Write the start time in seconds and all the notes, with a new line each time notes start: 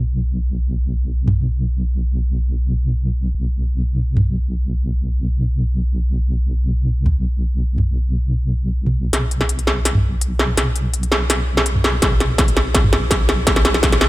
Already playing: B1
1.28 mid tom
3.35 B1
4.17 mid tom
7.06 mid tom
7.78 mid tom
8.86 mid tom
9.13 B1, snare, closed hi-hat
9.31 closed hi-hat
9.41 snare
9.49 closed hi-hat
9.59 closed hi-hat
9.67 snare
9.85 snare, closed hi-hat
9.95 mid tom
10.21 closed hi-hat
10.39 snare
10.57 B1, snare, closed hi-hat
10.76 closed hi-hat
10.94 closed hi-hat
11.03 closed hi-hat
11.12 snare
11.30 snare, closed hi-hat
11.57 snare
11.66 closed hi-hat
11.76 mid tom
11.84 snare
12.02 B1, kick, snare, closed hi-hat
12.20 snare, closed hi-hat
12.38 kick, snare, closed hi-hat
12.48 closed hi-hat
12.57 snare
12.74 kick, snare, closed hi-hat
12.84 mid tom
12.93 snare
13.11 kick, snare, closed hi-hat
13.29 snare
13.47 B1, kick, snare, closed hi-hat
13.56 snare
13.65 snare, closed hi-hat
13.74 snare
13.83 kick, snare, closed hi-hat
13.92 snare, closed hi-hat
14.01 snare